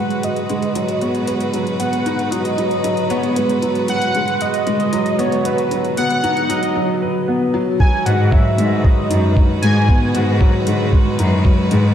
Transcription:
Already playing: G#2 F#3 G#3 F#4 B4 F#5
0.10 closed hi-hat
0.23 F#4 D#5, closed hi-hat
0.36 closed hi-hat
0.49 G#3, closed hi-hat
0.62 closed hi-hat
0.75 F#3, closed hi-hat
0.89 closed hi-hat
1.01 B3 C#5, closed hi-hat
1.15 closed hi-hat
1.27 F#4 B4, closed hi-hat
1.41 closed hi-hat
1.53 F#3, closed hi-hat
1.67 closed hi-hat
1.79 B3 F#5, closed hi-hat
1.93 closed hi-hat
2.06 D#4, closed hi-hat
2.19 closed hi-hat
2.31 F#3 D#5, closed hi-hat
2.45 closed hi-hat
2.58 F#3, closed hi-hat
2.71 closed hi-hat
2.84 F#3, closed hi-hat
2.97 closed hi-hat
3.10 B3 C#5, closed hi-hat
3.23 closed hi-hat
3.36 G#3 B4, closed hi-hat
3.49 closed hi-hat
3.62 F#3, closed hi-hat
3.75 closed hi-hat
3.88 F#3 F#5, closed hi-hat
4.02 closed hi-hat
4.15 G#3, closed hi-hat
4.28 closed hi-hat
4.41 F#4 D#5, closed hi-hat
4.54 closed hi-hat
4.67 G#3, closed hi-hat
4.80 closed hi-hat
4.93 F#3, closed hi-hat
5.06 closed hi-hat
5.19 B3 C#5, closed hi-hat
5.32 closed hi-hat
5.45 F#4 B4, closed hi-hat
5.58 closed hi-hat
5.71 F#3, closed hi-hat
5.85 closed hi-hat
5.97 B3 F#5, closed hi-hat
6.10 closed hi-hat
6.23 D#4, closed hi-hat
6.37 closed hi-hat
6.49 F#3 D#5, closed hi-hat
6.63 closed hi-hat
6.75 F#3
7.02 B4
7.28 B3
7.54 F#3
7.80 D#3 F#3 G#3 F#4 B4 G#5, kick
8.06 G#2 F#4 F#5, closed hi-hat
8.19 G#2
8.31 F#3 E5, kick
8.58 G#2 G#3, closed hi-hat
8.84 F#3 D#5, kick
9.10 F#2 D#4, closed hi-hat
9.36 F#3, kick
9.62 G#2 G#3 G#5, closed hi-hat
9.88 B3, kick
10.15 G#2 F#4, closed hi-hat
10.28 G#2
10.41 F#3, kick
10.67 G#2 G#3, closed hi-hat
10.92 G#3, kick
11.19 F#2 D#4, closed hi-hat
11.44 F#3, kick
11.71 G#2 G#3, closed hi-hat

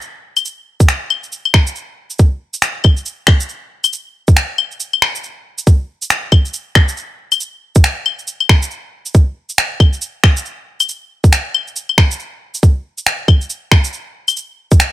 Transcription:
0.02 shaker
0.37 claves, shaker
0.45 shaker
0.80 kick, shaker
0.89 finger snap, shaker
1.10 claves
1.23 shaker
1.32 shaker
1.45 claves
1.54 finger snap, kick, claves
1.67 shaker
1.76 shaker
2.10 shaker
2.19 kick, shaker
2.54 shaker
2.62 finger snap, shaker
2.84 kick, claves
2.97 shaker
3.06 shaker
3.27 finger snap, kick, claves
3.40 shaker
3.49 shaker
3.84 claves, shaker
3.93 shaker
4.28 kick, shaker
4.37 finger snap, shaker
4.58 claves
4.71 shaker
4.80 shaker
4.93 claves
5.02 finger snap, claves
5.15 shaker
5.24 shaker
5.58 shaker
5.67 kick, shaker
6.02 shaker
6.10 finger snap, shaker
6.32 kick, claves
6.45 shaker
6.54 shaker
6.75 finger snap, kick, claves
6.88 shaker
6.97 shaker
7.32 claves, shaker
7.40 shaker
7.75 kick, shaker
7.84 finger snap, shaker
8.06 claves
8.19 shaker
8.27 shaker
8.40 claves
8.49 finger snap, kick, claves
8.62 shaker
8.71 shaker
9.06 shaker
9.14 kick, shaker
9.49 shaker
9.58 finger snap, shaker
9.80 kick, claves
9.93 shaker
10.02 shaker
10.24 finger snap, kick, claves
10.37 shaker
10.46 shaker
10.80 claves, shaker
10.89 shaker
11.24 kick, shaker
11.33 finger snap, shaker
11.54 claves
11.67 shaker
11.76 shaker
11.89 claves
11.98 finger snap, kick, claves
12.11 shaker
12.20 shaker
12.54 shaker
12.63 kick, shaker
12.98 shaker
13.06 finger snap, shaker
13.28 kick, claves
13.41 shaker
13.50 shaker
13.72 finger snap, kick, claves
13.84 shaker
13.93 shaker
14.28 claves, shaker
14.37 shaker
14.71 kick, shaker
14.80 finger snap, shaker

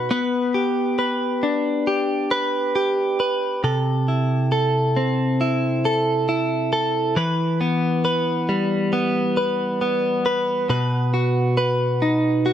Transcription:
Already playing: B2 D#4 F#4 B4
0.11 B3 B4
0.54 G4
0.99 B4
1.43 D4
1.87 G4
2.31 B4
2.75 G4
3.20 B4
3.64 C3 A4
4.08 E4
4.52 A4
4.96 C4
5.41 E4
5.85 A4
6.29 E4
6.73 A4
7.16 E3 B4
7.61 B3
8.05 B4
8.49 G3
8.93 B3
9.37 B4
9.81 B3
10.26 B4
10.69 B2 B4
11.14 F#4
11.57 B4
12.02 D#4
12.46 F#4

